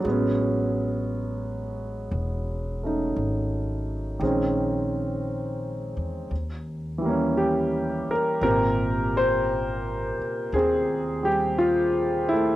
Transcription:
0, 0, Header, 1, 4, 480
1, 0, Start_track
1, 0, Tempo, 1039861
1, 21, Time_signature, 4, 2, 24, 8
1, 1941, Tempo, 1050788
1, 5757, End_track
2, 0, Start_track
2, 0, Title_t, "Grand piano"
2, 0, Program_c, 0, 0
2, 0, Control_c, 0, 64, 127
2, 1, Note_on_c, 0, 54, 54
2, 17, Note_on_c, 0, 56, 51
2, 27, Control_c, 0, 64, 0
2, 35, Note_on_c, 0, 59, 49
2, 49, Note_on_c, 0, 61, 56
2, 113, Control_c, 0, 64, 127
2, 1304, Note_off_c, 0, 61, 0
2, 1307, Note_on_c, 0, 57, 39
2, 1311, Note_on_c, 0, 61, 32
2, 1322, Note_on_c, 0, 63, 41
2, 1931, Note_off_c, 0, 54, 0
2, 1936, Note_on_c, 0, 51, 50
2, 1938, Note_off_c, 0, 56, 0
2, 1941, Note_off_c, 0, 57, 0
2, 1943, Note_off_c, 0, 61, 0
2, 1945, Note_on_c, 0, 56, 43
2, 1947, Control_c, 0, 64, 0
2, 1948, Note_off_c, 0, 59, 0
2, 1948, Note_off_c, 0, 63, 0
2, 1951, Note_on_c, 0, 60, 44
2, 1958, Note_on_c, 0, 61, 50
2, 2027, Control_c, 0, 64, 127
2, 2897, Note_off_c, 0, 51, 0
2, 2902, Note_off_c, 0, 56, 0
2, 2905, Note_off_c, 0, 60, 0
2, 2907, Control_c, 0, 64, 0
2, 2908, Note_off_c, 0, 61, 0
2, 2979, Control_c, 0, 64, 127
2, 3210, Note_on_c, 0, 52, 51
2, 3225, Note_on_c, 0, 55, 47
2, 3243, Note_on_c, 0, 58, 49
2, 3261, Note_on_c, 0, 61, 59
2, 3389, Note_on_c, 0, 67, 66
2, 3725, Note_off_c, 0, 67, 0
2, 3725, Note_on_c, 0, 70, 73
2, 3857, Note_off_c, 0, 52, 0
2, 3864, Note_off_c, 0, 70, 0
2, 3865, Note_off_c, 0, 55, 0
2, 3866, Note_on_c, 0, 48, 40
2, 3870, Note_on_c, 0, 46, 39
2, 3871, Control_c, 0, 64, 0
2, 3871, Note_on_c, 0, 60, 49
2, 3871, Note_on_c, 0, 70, 82
2, 3874, Note_off_c, 0, 58, 0
2, 3878, Note_on_c, 0, 67, 58
2, 3882, Note_off_c, 0, 61, 0
2, 3950, Control_c, 0, 64, 127
2, 4207, Note_off_c, 0, 70, 0
2, 4209, Note_on_c, 0, 72, 93
2, 4663, Note_off_c, 0, 72, 0
2, 4815, Note_off_c, 0, 67, 0
2, 4833, Note_on_c, 0, 68, 83
2, 4835, Note_off_c, 0, 60, 0
2, 4841, Note_on_c, 0, 60, 64
2, 5149, Note_on_c, 0, 55, 39
2, 5159, Note_on_c, 0, 67, 79
2, 5165, Note_off_c, 0, 68, 0
2, 5297, Note_off_c, 0, 67, 0
2, 5312, Note_on_c, 0, 65, 80
2, 5633, Note_on_c, 0, 64, 81
2, 5641, Note_off_c, 0, 65, 0
2, 5651, Note_on_c, 0, 57, 58
2, 5757, Note_off_c, 0, 46, 0
2, 5757, Note_off_c, 0, 48, 0
2, 5757, Note_off_c, 0, 55, 0
2, 5757, Note_off_c, 0, 57, 0
2, 5757, Note_off_c, 0, 60, 0
2, 5757, Note_off_c, 0, 64, 0
2, 5757, End_track
3, 0, Start_track
3, 0, Title_t, "Upright bass"
3, 0, Program_c, 1, 32
3, 21, Note_on_c, 1, 33, 75
3, 963, Note_off_c, 1, 33, 0
3, 976, Note_on_c, 1, 28, 70
3, 1440, Note_off_c, 1, 28, 0
3, 1460, Note_on_c, 1, 32, 66
3, 1923, Note_off_c, 1, 32, 0
3, 1941, Note_on_c, 1, 34, 76
3, 2728, Note_off_c, 1, 34, 0
3, 2746, Note_on_c, 1, 40, 54
3, 2889, Note_off_c, 1, 40, 0
3, 2902, Note_on_c, 1, 39, 62
3, 3694, Note_off_c, 1, 39, 0
3, 3864, Note_on_c, 1, 32, 70
3, 4655, Note_off_c, 1, 32, 0
3, 4827, Note_on_c, 1, 39, 67
3, 5757, Note_off_c, 1, 39, 0
3, 5757, End_track
4, 0, Start_track
4, 0, Title_t, "Muted upright bass strokes"
4, 3713, Note_on_c, 9, 29, 34
4, 3759, Note_off_c, 9, 29, 0
4, 4674, Note_on_c, 9, 29, 28
4, 4720, Note_off_c, 9, 29, 0
4, 5757, End_track
0, 0, End_of_file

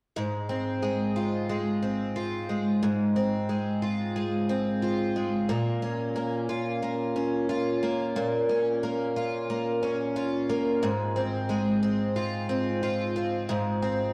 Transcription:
0, 0, Header, 1, 2, 480
1, 0, Start_track
1, 0, Key_signature, -4, "major"
1, 0, Tempo, 666667
1, 115, Time_signature, 4, 2, 24, 8
1, 10175, End_track
2, 0, Start_track
2, 0, Title_t, "Twelve-string acoustic guitar"
2, 0, Program_c, 0, 25
2, 117, Note_on_c, 0, 44, 67
2, 354, Note_on_c, 0, 60, 49
2, 594, Note_on_c, 0, 56, 51
2, 835, Note_on_c, 0, 65, 50
2, 1066, Note_off_c, 0, 56, 0
2, 1075, Note_on_c, 0, 56, 50
2, 1305, Note_off_c, 0, 60, 0
2, 1314, Note_on_c, 0, 60, 49
2, 1551, Note_off_c, 0, 65, 0
2, 1554, Note_on_c, 0, 65, 53
2, 1786, Note_off_c, 0, 56, 0
2, 1794, Note_on_c, 0, 56, 47
2, 2026, Note_off_c, 0, 44, 0
2, 2034, Note_on_c, 0, 44, 63
2, 2267, Note_off_c, 0, 60, 0
2, 2275, Note_on_c, 0, 60, 50
2, 2505, Note_off_c, 0, 56, 0
2, 2513, Note_on_c, 0, 56, 50
2, 2749, Note_off_c, 0, 65, 0
2, 2751, Note_on_c, 0, 65, 51
2, 2985, Note_off_c, 0, 56, 0
2, 2994, Note_on_c, 0, 56, 49
2, 3226, Note_off_c, 0, 60, 0
2, 3234, Note_on_c, 0, 60, 52
2, 3469, Note_off_c, 0, 65, 0
2, 3472, Note_on_c, 0, 65, 53
2, 3705, Note_off_c, 0, 56, 0
2, 3714, Note_on_c, 0, 56, 45
2, 3953, Note_on_c, 0, 46, 73
2, 3955, Note_off_c, 0, 44, 0
2, 4003, Note_off_c, 0, 56, 0
2, 4003, Note_off_c, 0, 60, 0
2, 4192, Note_on_c, 0, 61, 52
2, 4432, Note_on_c, 0, 58, 54
2, 4670, Note_off_c, 0, 65, 0
2, 4673, Note_on_c, 0, 65, 54
2, 4905, Note_off_c, 0, 58, 0
2, 4913, Note_on_c, 0, 58, 51
2, 5145, Note_off_c, 0, 61, 0
2, 5154, Note_on_c, 0, 61, 50
2, 5391, Note_off_c, 0, 65, 0
2, 5394, Note_on_c, 0, 65, 56
2, 5627, Note_off_c, 0, 58, 0
2, 5635, Note_on_c, 0, 58, 48
2, 5866, Note_off_c, 0, 46, 0
2, 5875, Note_on_c, 0, 46, 70
2, 6106, Note_off_c, 0, 61, 0
2, 6115, Note_on_c, 0, 61, 50
2, 6350, Note_off_c, 0, 58, 0
2, 6358, Note_on_c, 0, 58, 51
2, 6595, Note_off_c, 0, 65, 0
2, 6598, Note_on_c, 0, 65, 51
2, 6829, Note_off_c, 0, 58, 0
2, 6838, Note_on_c, 0, 58, 53
2, 7067, Note_off_c, 0, 61, 0
2, 7075, Note_on_c, 0, 61, 54
2, 7313, Note_off_c, 0, 65, 0
2, 7316, Note_on_c, 0, 65, 55
2, 7547, Note_off_c, 0, 58, 0
2, 7556, Note_on_c, 0, 58, 51
2, 7795, Note_off_c, 0, 46, 0
2, 7795, Note_on_c, 0, 44, 75
2, 7843, Note_off_c, 0, 58, 0
2, 7843, Note_off_c, 0, 61, 0
2, 8035, Note_on_c, 0, 60, 55
2, 8274, Note_on_c, 0, 56, 57
2, 8507, Note_off_c, 0, 60, 0
2, 8515, Note_on_c, 0, 60, 57
2, 8752, Note_off_c, 0, 65, 0
2, 8755, Note_on_c, 0, 65, 58
2, 8985, Note_off_c, 0, 60, 0
2, 8994, Note_on_c, 0, 60, 60
2, 9233, Note_off_c, 0, 65, 0
2, 9236, Note_on_c, 0, 65, 58
2, 9466, Note_off_c, 0, 60, 0
2, 9474, Note_on_c, 0, 60, 55
2, 9703, Note_off_c, 0, 44, 0
2, 9712, Note_on_c, 0, 44, 76
2, 9945, Note_off_c, 0, 60, 0
2, 9954, Note_on_c, 0, 60, 57
2, 10175, Note_off_c, 0, 44, 0
2, 10175, Note_off_c, 0, 56, 0
2, 10175, Note_off_c, 0, 60, 0
2, 10175, Note_off_c, 0, 65, 0
2, 10175, End_track
0, 0, End_of_file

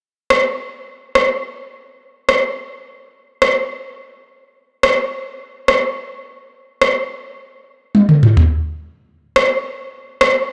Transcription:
0, 0, Header, 1, 2, 480
1, 0, Start_track
1, 0, Tempo, 566038
1, 1459, Time_signature, 4, 2, 24, 8
1, 8925, End_track
2, 0, Start_track
2, 0, Title_t, "Drums"
2, 257, Note_on_c, 9, 37, 96
2, 342, Note_off_c, 9, 37, 0
2, 978, Note_on_c, 9, 37, 87
2, 1062, Note_off_c, 9, 37, 0
2, 1939, Note_on_c, 9, 37, 83
2, 2024, Note_off_c, 9, 37, 0
2, 2898, Note_on_c, 9, 37, 91
2, 2983, Note_off_c, 9, 37, 0
2, 4099, Note_on_c, 9, 37, 97
2, 4183, Note_off_c, 9, 37, 0
2, 4819, Note_on_c, 9, 37, 94
2, 4903, Note_off_c, 9, 37, 0
2, 5779, Note_on_c, 9, 37, 86
2, 5864, Note_off_c, 9, 37, 0
2, 6739, Note_on_c, 9, 48, 53
2, 6824, Note_off_c, 9, 48, 0
2, 6859, Note_on_c, 9, 47, 58
2, 6944, Note_off_c, 9, 47, 0
2, 6979, Note_on_c, 9, 45, 76
2, 7064, Note_off_c, 9, 45, 0
2, 7098, Note_on_c, 9, 43, 82
2, 7183, Note_off_c, 9, 43, 0
2, 7938, Note_on_c, 9, 37, 100
2, 8022, Note_off_c, 9, 37, 0
2, 8658, Note_on_c, 9, 37, 96
2, 8743, Note_off_c, 9, 37, 0
2, 8925, End_track
0, 0, End_of_file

